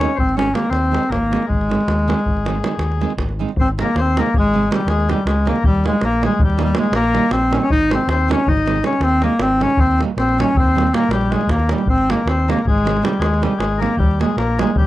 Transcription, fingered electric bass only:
0.18 0.50 G#1 medium
0.71 0.94 D#2 medium
1.10 1.33 G#1 loud
1.49 1.72 G#1 loud
1.87 2.11 D#2 medium
2.25 2.58 G#1 medium
2.79 3.02 D#2 loud
3.17 3.41 G#1 loud
3.56 3.79 G#1 loud
3.96 4.18 D#2 medium
4.33 4.65 G#1 medium
4.87 5.10 D#2 loud
5.25 5.48 C#2 medium
5.63 5.86 D#2 loud
6.02 6.25 A#1 medium
6.39 6.71 D#2 medium
6.92 7.15 A#1 loud
7.31 7.54 A#1 loud
7.70 7.93 G#1 loud
8.07 8.31 D#2 medium
8.46 8.79 G#1 loud
9.00 9.24 D#2 medium
9.39 9.62 G#1 loud
9.77 10.01 D#2 loud
10.17 10.40 A#1 medium
10.55 10.87 D#2 loud
11.09 11.32 A#1 medium
11.47 11.71 D#2 medium
11.86 12.10 G#1 medium
12.26 12.50 D#2 medium
12.65 12.97 G#1 loud
13.20 13.43 D#2 medium
13.59 13.82 G#1 medium
13.97 14.21 D#2 medium
14.37 14.60 A#1 medium
14.76 14.87 D#2 medium

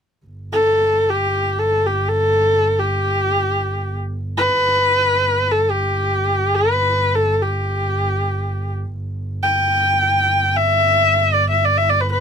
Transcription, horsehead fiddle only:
0.52 1.12 A4 medium
1.10 1.61 G4 medium
1.59 1.88 A4 medium
1.86 2.10 G4 medium
2.09 2.81 A4 medium
2.79 3.96 G4 medium
4.38 5.53 B4 medium
5.51 5.72 A4 medium
5.70 6.57 G4 medium
6.55 7.17 B4 medium
7.15 7.44 A4 medium
7.42 8.73 G4 medium
9.43 10.58 G5 medium
10.56 11.35 E5 medium
11.34 11.49 D5 medium
11.50 11.67 E5 medium
11.65 11.79 D5 medium
11.78 11.91 E5 medium
11.90 12.02 D5 medium
12.01 12.11 B4 medium
12.12 12.20 B4 medium

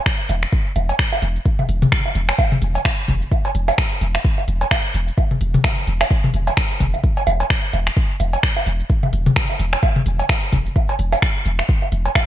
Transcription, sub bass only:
0.29 0.45 E1 loud
0.76 0.92 E1 loud
1.22 1.38 E1 loud
1.69 1.85 E1 medium
2.15 2.31 E1 loud
2.62 2.78 E1 loud
3.08 3.24 E1 medium
3.55 3.71 E1 medium
4.01 4.17 E1 loud
4.48 4.64 E1 loud
4.94 5.10 E1 medium
5.41 5.57 E1 medium
5.87 6.03 E1 loud
6.34 6.50 E1 loud
6.80 6.96 E1 loud
7.27 7.43 E1 medium
7.73 7.89 E1 loud
8.20 8.36 E1 loud
8.66 8.83 E1 loud
9.13 9.29 E1 medium
9.60 9.76 E1 loud
10.06 10.22 E1 loud
10.53 10.69 E1 loud
10.99 11.15 E1 medium
11.46 11.62 E1 medium
11.92 12.08 E1 loud

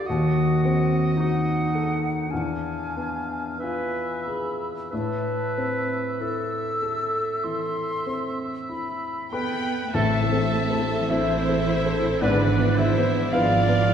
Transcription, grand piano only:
0.10 2.28 D#2 medium
0.65 1.52 C4 soft
1.20 2.08 F#4 soft
1.75 2.32 A4 soft
2.33 4.88 E2 soft
2.97 4.01 B3 soft
3.63 4.66 F4 soft
4.27 4.92 G#4 soft
4.93 7.41 A2 soft
5.58 6.58 C4 soft
6.21 7.20 E4 soft
6.82 7.82 A4 soft
7.44 8.44 E3 soft
8.06 9.07 C4 soft
8.69 9.71 E4 soft
9.33 9.94 A4 soft
9.33 9.91 B4 soft
9.33 9.90 B5 medium
9.94 10.32 A2 medium
9.94 10.31 A4 soft
9.94 11.06 E5 soft
9.94 11.06 A5 medium
10.32 10.67 C4 soft
10.32 10.67 E4 soft
10.32 10.67 A4 soft
10.70 11.05 C4 soft
10.70 11.06 E4 soft
10.70 11.06 A4 soft
11.09 11.45 C4 soft
11.09 11.47 E4 soft
11.09 11.45 A4 soft
11.09 12.19 C5 soft
11.09 12.18 E5 medium
11.48 11.82 C4 soft
11.48 11.82 E4 soft
11.48 11.82 A4 soft
11.85 12.19 C4 soft
11.85 12.19 E4 soft
11.85 12.19 A4 soft
12.22 12.58 G#2 medium
12.22 12.75 D4 soft
12.22 12.58 B4 soft
12.22 12.74 D5 medium
12.59 12.92 B3 soft
12.59 12.77 E4 soft
12.59 12.93 B4 soft
12.78 12.96 E4 soft
12.78 13.29 E5 medium
12.98 13.30 B3 soft
12.98 13.30 E4 soft
12.98 13.30 B4 soft
13.33 13.65 B3 soft
13.33 13.66 E4 soft
13.33 13.94 F4 medium
13.33 13.66 B4 soft
13.33 13.94 F5 medium
13.69 13.94 B3 soft
13.69 13.94 E4 soft
13.69 13.94 B4 soft

